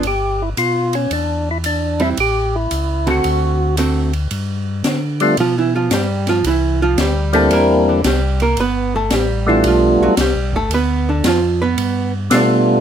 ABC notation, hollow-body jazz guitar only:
X:1
M:4/4
L:1/8
Q:"Swing" 1/4=112
K:Gmix
V:1 name="Hollow-body jazz guitar"
z6 z [G,CE] | z3 [D,A,C^F]3 [D,A,CF] z | z4 (3[F,F] [E,E] [F,F] [G,G] [F,F] | [E,E] [F,F] [G,G] [A,A] [_B,_B] [D,D] [G,G] [B,B] |
[B,B] [A,A] [G,G] [E,E] [F,F] [^F,^F] [G,G] [A,A] | [B,B] [D,D] [F,F] [B,B]2 z3 |]